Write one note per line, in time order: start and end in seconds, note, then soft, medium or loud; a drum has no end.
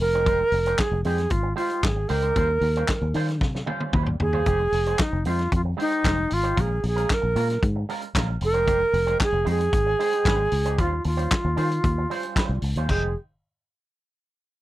0.00 0.42 F1 loud
0.00 0.81 A#4 loud
0.00 muted clean electric guitar stroke soft
0.13 0.25 G#3 medium
0.13 0.26 D#4 medium
0.13 0.26 G4 medium
0.13 0.26 C5 medium
0.13 closed hi-hat soft
0.26 0.42 G#3 loud
0.26 0.40 D#4 medium
0.26 0.40 G4 medium
0.26 0.39 C5 medium
0.26 kick loud
0.26 closed hi-hat medium
0.40 muted clean electric guitar stroke soft
0.52 0.73 F1 loud
0.52 muted clean electric guitar stroke soft
0.52 open hi-hat medium
0.66 0.79 G#3 soft
0.66 0.78 D#4 medium
0.66 0.78 G4 medium
0.66 0.78 C5 medium
0.66 closed hi-hat medium
0.78 1.04 G#4 loud
0.78 kick loud
0.78 snare loud
0.78 clap loud
0.78 closed hi-hat medium
0.92 1.02 F1 loud
0.92 muted clean electric guitar stroke soft
1.04 1.26 F2 loud
1.04 1.20 G#3 medium
1.04 1.17 D#4 medium
1.04 1.17 G4 medium
1.04 1.32 G#4 medium
1.04 1.17 C5 medium
1.04 open hi-hat medium
1.18 muted clean electric guitar stroke soft
1.18 snare soft
1.18 closed hi-hat soft
1.30 1.52 G#1 loud
1.30 1.56 F4 loud
1.30 muted clean electric guitar stroke soft
1.30 kick loud
1.30 closed hi-hat medium
1.43 muted clean electric guitar stroke medium
1.56 1.70 G#3 medium
1.56 1.70 D#4 medium
1.56 1.85 F4 loud
1.56 1.69 G4 medium
1.56 1.69 C5 loud
1.56 open hi-hat medium
1.70 1.82 G#3 soft
1.70 1.81 D#4 medium
1.70 1.82 G4 medium
1.70 1.82 C5 medium
1.70 closed hi-hat soft
1.83 2.04 G#1 loud
1.83 2.10 G#4 medium
1.83 muted clean electric guitar stroke soft
1.83 kick loud
1.83 snare loud
1.83 clap loud
1.83 closed hi-hat medium
1.96 muted clean electric guitar stroke soft
2.08 2.31 C#2 medium
2.08 2.23 G#3 medium
2.08 2.23 D#4 loud
2.08 2.23 G4 loud
2.08 3.14 A#4 loud
2.08 2.22 C5 medium
2.08 open hi-hat medium
2.22 2.35 G#3 soft
2.22 2.35 D#4 medium
2.22 2.35 G4 medium
2.22 2.35 C5 medium
2.22 closed hi-hat soft
2.36 2.57 D#2 medium
2.36 2.51 G3 loud
2.36 2.49 C#4 medium
2.36 2.49 F4 loud
2.36 2.48 C5 loud
2.36 kick loud
2.36 closed hi-hat medium
2.49 muted clean electric guitar stroke soft
2.61 2.83 D#2 loud
2.61 muted clean electric guitar stroke soft
2.61 open hi-hat medium
2.76 2.89 G3 medium
2.76 2.88 C#4 medium
2.76 2.88 F4 medium
2.76 2.88 C5 medium
2.76 closed hi-hat medium
2.88 kick loud
2.88 snare loud
2.88 clap loud
2.88 closed hi-hat medium
3.02 3.12 D#2 loud
3.02 muted clean electric guitar stroke medium
3.14 3.41 D#3 loud
3.14 3.30 G3 medium
3.14 3.28 C#4 loud
3.14 3.28 F4 loud
3.14 3.27 C5 loud
3.14 open hi-hat medium
3.28 muted clean electric guitar stroke soft
3.28 snare soft
3.28 closed hi-hat soft
3.41 3.62 C3 loud
3.41 muted clean electric guitar stroke medium
3.41 kick loud
3.41 snare medium
3.55 muted clean electric guitar stroke soft
3.55 snare medium
3.66 3.81 G3 medium
3.66 3.81 C#4 loud
3.66 3.80 F4 loud
3.66 3.79 C5 loud
3.66 high tom medium
3.80 3.93 G3 medium
3.80 3.93 C#4 medium
3.80 3.93 F4 medium
3.80 3.92 C5 medium
3.80 high tom medium
3.93 4.15 D#2 loud
3.93 4.14 G3 medium
3.93 4.07 C#4 medium
3.93 4.07 F4 medium
3.93 4.06 C5 medium
3.93 kick loud
3.93 mid tom loud
4.06 muted clean electric guitar stroke medium
4.06 mid tom medium
4.20 4.41 D#2 medium
4.20 5.03 G#4 loud
4.20 muted clean electric guitar stroke soft
4.20 floor tom loud
4.33 4.46 G3 medium
4.33 4.46 C#4 medium
4.33 4.46 F4 medium
4.33 4.45 C5 medium
4.33 floor tom loud
4.46 4.67 F1 loud
4.46 4.62 G#3 medium
4.46 4.60 D#4 medium
4.46 4.60 G4 loud
4.46 4.59 C5 loud
4.46 kick loud
4.46 closed hi-hat medium
4.60 muted clean electric guitar stroke medium
4.72 4.93 F1 medium
4.72 muted clean electric guitar stroke medium
4.72 open hi-hat medium
4.86 4.99 G#3 medium
4.86 4.98 D#4 medium
4.86 4.98 G4 medium
4.86 4.98 C5 medium
4.86 closed hi-hat medium
4.99 5.26 D#4 medium
4.99 kick loud
4.99 snare loud
4.99 clap loud
4.99 closed hi-hat medium
5.13 5.23 F1 medium
5.13 muted clean electric guitar stroke medium
5.25 5.46 F2 loud
5.25 5.40 G#3 medium
5.25 5.39 D#4 medium
5.25 5.51 F4 medium
5.25 5.39 G4 medium
5.25 5.38 C5 loud
5.25 open hi-hat medium
5.39 muted clean electric guitar stroke soft
5.39 snare soft
5.39 closed hi-hat soft
5.52 5.73 F2 loud
5.52 5.61 F4 medium
5.52 muted clean electric guitar stroke medium
5.52 kick loud
5.52 closed hi-hat medium
5.65 muted clean electric guitar stroke soft
5.77 5.90 G#3 medium
5.77 5.90 D#4 loud
5.77 5.90 G4 loud
5.77 5.89 C5 medium
5.77 open hi-hat medium
5.81 6.35 D#4 loud
5.91 6.02 G#3 medium
5.91 6.03 D#4 medium
5.91 6.03 G4 medium
5.91 6.03 C5 medium
5.91 closed hi-hat soft
6.04 6.25 F1 loud
6.04 6.19 G#3 medium
6.04 6.16 D#4 medium
6.04 6.16 G4 medium
6.04 6.14 C5 medium
6.04 kick loud
6.04 snare loud
6.04 clap medium
6.04 closed hi-hat medium
6.16 muted clean electric guitar stroke soft
6.30 6.52 G#1 medium
6.30 6.62 F4 loud
6.30 muted clean electric guitar stroke soft
6.30 open hi-hat medium
6.43 6.54 G#3 medium
6.43 6.56 D#4 medium
6.43 6.56 G4 medium
6.43 6.55 C5 medium
6.43 closed hi-hat soft
6.56 6.78 A#1 loud
6.56 6.71 G#3 medium
6.56 6.69 C#4 medium
6.56 6.69 F4 medium
6.56 6.68 A#4 medium
6.56 kick loud
6.56 closed hi-hat medium
6.61 6.85 G#4 medium
6.69 muted clean electric guitar stroke soft
6.83 7.04 A#1 loud
6.83 muted clean electric guitar stroke soft
6.83 open hi-hat medium
6.87 7.15 G#4 loud
6.96 7.08 G#3 medium
6.96 7.08 C#4 medium
6.96 7.08 F4 medium
6.96 7.08 A#4 medium
6.96 closed hi-hat medium
7.10 7.64 A#4 loud
7.10 kick loud
7.10 snare loud
7.10 clap loud
7.10 closed hi-hat medium
7.22 7.33 A#1 loud
7.22 muted clean electric guitar stroke soft
7.36 7.57 A#2 loud
7.36 7.51 G#3 medium
7.36 7.49 C#4 medium
7.36 7.49 F4 medium
7.36 7.48 A#4 medium
7.36 open hi-hat medium
7.50 muted clean electric guitar stroke soft
7.50 snare soft
7.50 closed hi-hat medium
7.63 7.83 G#2 loud
7.63 kick loud
7.63 closed hi-hat medium
7.76 muted clean electric guitar stroke medium
7.89 8.04 G#3 medium
7.89 8.02 C#4 medium
7.89 8.02 F4 medium
7.89 8.01 A#4 loud
7.89 open hi-hat medium
8.02 muted clean electric guitar stroke soft
8.02 closed hi-hat soft
8.15 8.36 A#1 loud
8.15 8.30 G#3 medium
8.15 8.29 C#4 medium
8.15 8.28 F4 medium
8.15 8.28 A#4 loud
8.15 kick loud
8.15 snare loud
8.15 clap medium
8.15 closed hi-hat medium
8.29 muted clean electric guitar stroke soft
8.41 8.83 F1 medium
8.41 9.18 A#4 loud
8.41 muted clean electric guitar stroke soft
8.41 open hi-hat medium
8.54 8.65 G#3 medium
8.54 8.66 D#4 medium
8.54 8.66 G4 medium
8.54 8.66 C5 medium
8.54 closed hi-hat soft
8.66 8.82 G#3 loud
8.66 8.79 D#4 loud
8.66 8.78 G4 loud
8.66 8.78 C5 loud
8.66 kick loud
8.66 closed hi-hat medium
8.79 muted clean electric guitar stroke medium
8.93 9.14 F1 loud
8.93 muted clean electric guitar stroke soft
8.93 open hi-hat medium
9.07 9.19 G#3 medium
9.07 9.19 D#4 medium
9.07 9.19 G4 medium
9.07 9.18 C5 medium
9.07 closed hi-hat soft
9.20 9.47 G#4 loud
9.20 kick loud
9.20 snare loud
9.20 clap loud
9.20 closed hi-hat medium
9.32 9.43 F1 loud
9.32 muted clean electric guitar stroke medium
9.45 9.67 F2 loud
9.45 9.61 G#3 loud
9.45 9.59 D#4 medium
9.45 9.59 G4 loud
9.45 9.58 C5 loud
9.45 open hi-hat medium
9.50 10.82 G#4 loud
9.60 muted clean electric guitar stroke soft
9.60 closed hi-hat soft
9.73 9.94 G#1 loud
9.73 muted clean electric guitar stroke medium
9.73 kick loud
9.73 closed hi-hat medium
9.86 muted clean electric guitar stroke soft
9.99 10.13 G#3 medium
9.99 10.12 D#4 loud
9.99 10.12 G4 loud
9.99 10.11 C5 loud
9.99 open hi-hat medium
10.13 10.25 G#3 medium
10.13 10.24 D#4 medium
10.13 10.25 G4 medium
10.13 10.24 C5 medium
10.13 closed hi-hat soft
10.25 10.46 G#1 medium
10.25 10.46 G#3 medium
10.25 10.39 D#4 loud
10.25 10.39 G4 loud
10.25 10.38 C5 loud
10.25 kick loud
10.25 snare loud
10.25 clap medium
10.25 closed hi-hat medium
10.39 muted clean electric guitar stroke medium
10.51 10.78 C#2 loud
10.51 muted clean electric guitar stroke soft
10.51 open hi-hat medium
10.65 10.78 G#3 medium
10.65 10.77 D#4 medium
10.65 10.77 G4 medium
10.65 10.77 C5 medium
10.65 closed hi-hat soft
10.78 10.99 D#2 loud
10.78 10.93 G3 loud
10.78 10.92 C#4 loud
10.78 10.91 F4 loud
10.78 11.06 F4 medium
10.78 10.91 C5 loud
10.78 kick loud
10.78 closed hi-hat medium
10.92 muted clean electric guitar stroke medium
11.04 11.26 D#2 medium
11.04 12.60 F4 medium
11.04 muted clean electric guitar stroke medium
11.04 open hi-hat medium
11.17 11.30 G3 medium
11.17 11.30 C#4 medium
11.17 11.29 F4 medium
11.17 11.29 C5 medium
11.17 closed hi-hat medium
11.31 kick loud
11.31 snare loud
11.31 clap loud
11.31 closed hi-hat medium
11.45 11.55 D#2 medium
11.45 muted clean electric guitar stroke medium
11.56 11.78 D#3 loud
11.56 11.72 G3 medium
11.56 11.70 C#4 medium
11.56 11.69 F4 medium
11.56 11.69 C5 medium
11.56 open hi-hat medium
11.70 muted clean electric guitar stroke soft
11.70 closed hi-hat soft
11.84 12.05 D#2 loud
11.84 muted clean electric guitar stroke soft
11.84 kick loud
11.84 closed hi-hat medium
11.98 muted clean electric guitar stroke medium
12.10 12.23 G3 medium
12.10 12.23 C#4 medium
12.10 12.23 F4 medium
12.10 12.22 C5 loud
12.10 open hi-hat medium
12.23 12.35 G3 medium
12.23 12.35 C#4 medium
12.23 12.35 F4 medium
12.23 closed hi-hat soft
12.36 12.56 G3 medium
12.36 12.51 C#4 medium
12.36 12.50 F4 medium
12.36 12.49 C5 medium
12.36 kick loud
12.36 snare loud
12.36 clap medium
12.36 closed hi-hat medium
12.49 12.60 C2 medium
12.49 muted clean electric guitar stroke medium
12.62 12.73 C#2 medium
12.62 muted clean electric guitar stroke soft
12.62 open hi-hat medium
12.76 12.87 D#2 medium
12.76 12.89 G3 soft
12.76 12.89 C#4 medium
12.76 12.89 F4 medium
12.76 12.88 C5 medium
12.76 closed hi-hat soft
12.89 13.14 F1 medium
12.89 13.05 G#3 medium
12.89 13.06 D#4 medium
12.89 13.06 G4 loud
12.89 13.14 G#4 medium
12.89 13.06 C5 loud
12.89 kick loud
12.89 crash medium